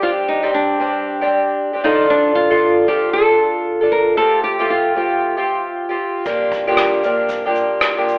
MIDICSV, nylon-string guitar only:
0, 0, Header, 1, 2, 480
1, 0, Start_track
1, 0, Key_signature, -2, "minor"
1, 0, Tempo, 520382
1, 15, Time_signature, 4, 2, 24, 8
1, 7547, End_track
2, 0, Start_track
2, 0, Title_t, "Nylon-string guitar"
2, 0, Program_c, 0, 24
2, 26, Note_on_c, 0, 65, 85
2, 90, Note_off_c, 0, 65, 0
2, 263, Note_on_c, 0, 63, 77
2, 497, Note_off_c, 0, 63, 0
2, 501, Note_on_c, 0, 62, 73
2, 1694, Note_off_c, 0, 62, 0
2, 1698, Note_on_c, 0, 63, 77
2, 1934, Note_off_c, 0, 63, 0
2, 1938, Note_on_c, 0, 62, 80
2, 2166, Note_off_c, 0, 62, 0
2, 2170, Note_on_c, 0, 65, 83
2, 2617, Note_off_c, 0, 65, 0
2, 2658, Note_on_c, 0, 67, 74
2, 2886, Note_off_c, 0, 67, 0
2, 2890, Note_on_c, 0, 69, 73
2, 3610, Note_off_c, 0, 69, 0
2, 3614, Note_on_c, 0, 70, 74
2, 3845, Note_off_c, 0, 70, 0
2, 3849, Note_on_c, 0, 69, 83
2, 4073, Note_off_c, 0, 69, 0
2, 4093, Note_on_c, 0, 67, 78
2, 4337, Note_on_c, 0, 65, 70
2, 4339, Note_off_c, 0, 67, 0
2, 5497, Note_off_c, 0, 65, 0
2, 7547, End_track
0, 0, End_of_file